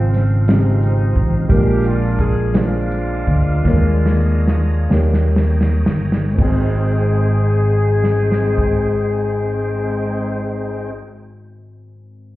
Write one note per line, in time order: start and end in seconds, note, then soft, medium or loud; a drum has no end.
0.00 1.12 G#1 medium
0.00 0.44 G#2 medium
0.00 0.26 C#3 medium
0.00 0.44 C#3 medium
0.00 0.78 F3 medium
0.00 0.25 G#3 medium
0.00 0.25 C4 medium
0.00 0.44 C4 medium
0.00 1.47 C4 medium
0.00 0.26 F4 medium
0.00 0.27 C5 medium
0.00 1.47 F5 medium
0.14 snare soft
0.14 closed hi-hat medium
0.48 1.28 C#3 soft
0.48 1.27 G#3 medium
0.48 1.28 C4 medium
0.48 1.46 C4 medium
0.48 1.50 D#4 medium
0.48 1.28 F4 medium
0.48 1.29 G4 medium
0.48 snare medium
0.48 closed hi-hat medium
0.83 closed hi-hat soft
1.16 1.47 A1 medium
1.16 kick medium
1.16 closed hi-hat soft
1.49 3.23 A#1 medium
1.49 2.50 A#2 medium
1.49 2.30 G#3 medium
1.49 2.31 A#3 medium
1.49 1.56 C#4 soft
1.49 2.50 D4 medium
1.49 2.31 F4 medium
1.49 1.84 G4 medium
1.49 3.63 A#4 medium
1.49 2.32 A#4 medium
1.49 3.64 F5 medium
1.49 3.64 D6 medium
1.49 kick loud
1.49 closed hi-hat medium
1.56 2.34 D4 medium
1.84 2.20 F4 medium
1.84 closed hi-hat soft
2.19 2.52 G#4 medium
2.19 kick medium
2.19 closed hi-hat medium
2.51 3.39 G#3 medium
2.51 5.33 G#3 medium
2.51 3.39 A#3 medium
2.51 3.40 D4 medium
2.51 3.40 F4 medium
2.51 3.40 C5 medium
2.51 snare medium
2.51 closed hi-hat medium
2.56 5.34 D4 medium
2.56 5.38 F4 medium
2.91 closed hi-hat soft
3.27 3.62 D2 medium
3.27 kick medium
3.27 closed hi-hat soft
3.64 4.86 D#2 medium
3.64 4.86 D#3 medium
3.64 3.72 G3 medium
3.64 4.61 A#3 medium
3.64 4.63 A#4 medium
3.64 6.36 C#5 medium
3.64 4.62 C#5 medium
3.64 6.36 A#5 medium
3.64 6.36 D#6 medium
3.64 kick loud
3.64 snare soft
3.70 4.64 G#3 medium
4.06 snare medium
4.47 snare medium
4.89 5.82 D#2 medium
4.89 6.35 D#3 medium
4.89 6.03 A#3 medium
4.89 6.03 G4 medium
4.89 6.05 A#4 medium
4.89 6.04 C#5 medium
4.89 6.38 G5 medium
4.89 snare medium
5.13 snare medium
5.36 snare medium
5.61 snare medium
5.86 6.35 G1 medium
5.86 snare medium
6.12 snare medium
6.30 10.81 G#3 medium
6.34 10.88 G#1 medium
6.34 10.85 C4 medium
6.34 10.88 D#4 medium
6.38 10.89 G#1 medium
6.38 10.90 G#3 medium
6.38 10.90 C4 medium
6.38 10.91 D#4 medium
6.38 10.92 G#4 medium
6.38 10.91 C5 medium
6.38 10.91 G5 medium
6.38 10.92 G5 medium
6.38 kick medium
6.38 crash medium
6.45 10.95 C5 medium
8.04 snare soft
8.32 snare medium
8.58 kick medium